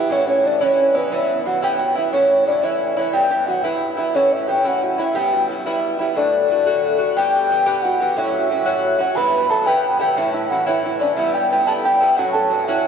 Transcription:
Already playing: B3 G4 E5
0.10 A2 E3 C#4 E4 C#5
0.27 C#4 C#5
0.43 A2 E3 C#4 D4 E4 D5
0.60 A2 E3 C#4 E4 C#5
0.94 E3 B3 C#4 E4 B4
1.11 G2 E3 B3 E4 E5
1.45 G2 E3 B3 E4 F#4 F#5
1.62 G2 E3 B3 E4 G4 G5
1.79 F#4
1.95 E3 B3 E4 E5
2.12 A2 E3 C#4 E4 C#5
2.45 A2 E3 C#4 D4 E4 D5
2.63 A2 E3 C#4 E4 E5
2.97 E3 C#4 E4 E5
3.13 G2 E3 B3 E4 G4 G5
3.31 G4
3.47 G2 E3 B3 E4 F#4 F#5
3.64 G2 E3 B3 E4 E5
3.97 E3 B3 E4 E5
4.14 A2 E3 C#4 E4 C#5
4.32 E4 E5
4.48 A2 E3 C#4 E4 G4 G5
4.65 A2 E3 C#4 E4 F#4 F#5
4.83 F#4
4.98 E3 C#4 E4 E5
5.15 G2 G3 B3 E4 G4 G5
5.33 F#4
5.48 G2 G3 B3 E4
5.66 G2 G3 B3 E4 E5
5.99 G3 B3 E4 E5
6.15 A2 D3 A3 D4 F#4 D5
6.48 A2 D3 A3 F#4
6.66 A2 D3 A3 F#4
6.99 D3 A3 F#4
7.16 G2 E3 B3 G4 G5
7.49 G2 E3 B3 G4
7.66 G2 E3 B3 G4
7.82 F#4 F#5
8.00 E3 B3 F#4 G4
8.16 A2 F#3 C#4 E4 F#4 E5
8.49 A2 F#3 C#4 F#4
8.65 A2 F#3 C#4 F#4
8.98 F#3 C#4 F#4 F#5
9.16 G2 E3 B3 E4 B4 B5
9.49 G2 E3 B3 E4 A4 A5
9.66 G2 E3 B3 E4 G4 G5
9.99 E3 B3 E4 G4 G5
10.16 A2 E3 C#4 E4 E5
10.33 E4 E5
10.49 A2 E3 C#4 E4 F#4 F#5
10.66 A2 E3 C#4 E4 E5
10.86 E4
11.00 E3 C#4 D4 E4 D5
11.16 G2 G3 B3 E4 E5
11.34 G4 G5
11.50 G2 G3 B3 E4 G4
11.66 G2 G3 B3 E4 A4 A5
11.82 G4 G5
12.01 G3 B3 E4
12.16 A2 F#3 C#4 F#4 F#5
12.32 A4 A5
12.51 A2 F#3 C#4 F#4
12.65 C#4 E4 F#4 E5
12.69 A2 F#3

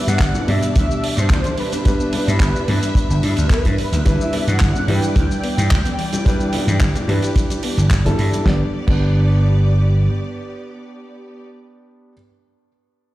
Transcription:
Already playing: G3 B3 D4 G4 B4 D5
0.07 G2 G3 F#5, closed hi-hat, high conga, shaker
0.19 G1 B3, kick, clap, closed hi-hat, shaker
0.34 D4, high bongo, low conga, shaker
0.47 G2 B2 G3 D4 D5 E5, open hi-hat, high conga
0.62 B3, closed hi-hat, shaker
0.75 D2 G3 E5, kick, closed hi-hat, high bongo, shaker
0.89 B3, high conga, shaker
1.03 D4, open hi-hat
1.17 G2 G3 C5, closed hi-hat, shaker
1.30 D2 B3, kick, clap, closed hi-hat, high bongo, shaker
1.44 D4, closed hi-hat, high conga, shaker
1.58 G3 B4 E5, open hi-hat
1.72 B3, closed hi-hat, high bongo, low conga, shaker
1.85 G3 B3 D4 B4, kick, closed hi-hat, high conga, shaker
2.00 B3, shaker
2.13 D4, open hi-hat, low conga
2.27 G2 G3, closed hi-hat, high bongo, high conga, shaker
2.40 G1 B3, kick, clap, closed hi-hat, shaker
2.55 D4, low conga, shaker
2.67 G2 G3 B3 D4 B4, open hi-hat, high bongo, high conga
2.82 B3, closed hi-hat, shaker
2.95 G3, kick, closed hi-hat, shaker
3.10 G1 B3, high conga, shaker
3.23 G2 D4, open hi-hat, high bongo
3.37 D2 G3, closed hi-hat, shaker
3.50 B3 B4, kick, clap, closed hi-hat, shaker
3.65 G2 D4, kick, closed hi-hat, high bongo, high conga, shaker
3.78 G3, muted slap bass stroke, open hi-hat
3.92 D2 B3, closed hi-hat, low conga, shaker
4.05 G1 E3 G3 D4 E4 B4 D5 E5, kick, closed hi-hat, high conga, shaker
4.20 G3, high bongo, shaker
4.33 B3, open hi-hat, low conga
4.48 G2 E3 F#5, closed hi-hat, high conga, shaker
4.60 G1 G3, kick, clap, closed hi-hat, high bongo, shaker
4.75 B3, low conga, shaker
4.87 G2 E3 G3 D4 E4 B4 G5, open hi-hat, high conga
5.02 G3, closed hi-hat, shaker
5.16 D2 E3, kick, closed hi-hat, high bongo, shaker
5.31 G3, high conga, shaker
5.44 B3, open hi-hat
5.58 G2 E3, closed hi-hat, high bongo, shaker
5.71 D2 G3, kick, clap, closed hi-hat, shaker
5.85 B3, closed hi-hat, high conga, shaker
5.99 E3, open hi-hat
6.13 G3, closed hi-hat, high bongo, low conga, shaker
6.25 E3 G3 D4 E4 G4 B4, kick, closed hi-hat, high conga, shaker
6.40 G3, shaker
6.53 B3, open hi-hat, high bongo, low conga
6.67 G2 E3, closed hi-hat, high conga, shaker
6.80 G1 G3, kick, clap, closed hi-hat, shaker
6.95 B3, closed hi-hat, low conga, shaker
7.08 G2 E3 G3 D4 E4 B4, open hi-hat, high bongo, high conga
7.22 G3, closed hi-hat, shaker
7.36 E3, kick, closed hi-hat, shaker
7.50 G3, closed hi-hat, high bongo, high conga, shaker
7.63 B3, open hi-hat
7.77 G1 E3, closed hi-hat, shaker
7.91 G3, kick, clap, closed hi-hat, shaker
8.05 G3 B3 D4 E4 A4, kick, closed hi-hat, high bongo, high conga, shaker
8.18 G2 E3, open hi-hat
8.33 G3, closed hi-hat, low conga, shaker
8.45 G1 G3 B3 D4 G4 D5, kick, snare
8.87 G1 G3 B3 D4 G4 D5, kick, crash

